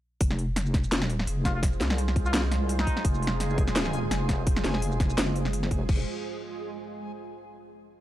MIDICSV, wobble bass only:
0, 0, Header, 1, 2, 480
1, 0, Start_track
1, 0, Key_signature, -4, "minor"
1, 0, Tempo, 355030
1, 281, Time_signature, 4, 2, 24, 8
1, 10823, End_track
2, 0, Start_track
2, 0, Title_t, "Wobble bass"
2, 0, Program_c, 0, 39
2, 281, Note_on_c, 0, 29, 96
2, 1281, Note_off_c, 0, 29, 0
2, 1281, Note_on_c, 0, 28, 96
2, 1704, Note_off_c, 0, 28, 0
2, 1721, Note_on_c, 0, 29, 101
2, 2424, Note_off_c, 0, 29, 0
2, 2436, Note_on_c, 0, 36, 100
2, 3861, Note_off_c, 0, 36, 0
2, 4119, Note_on_c, 0, 29, 101
2, 5543, Note_off_c, 0, 29, 0
2, 5559, Note_on_c, 0, 29, 100
2, 6263, Note_off_c, 0, 29, 0
2, 6283, Note_on_c, 0, 29, 98
2, 6985, Note_off_c, 0, 29, 0
2, 7004, Note_on_c, 0, 30, 93
2, 7705, Note_off_c, 0, 30, 0
2, 7721, Note_on_c, 0, 29, 99
2, 7944, Note_off_c, 0, 29, 0
2, 7962, Note_on_c, 0, 29, 98
2, 8185, Note_off_c, 0, 29, 0
2, 10823, End_track
0, 0, End_of_file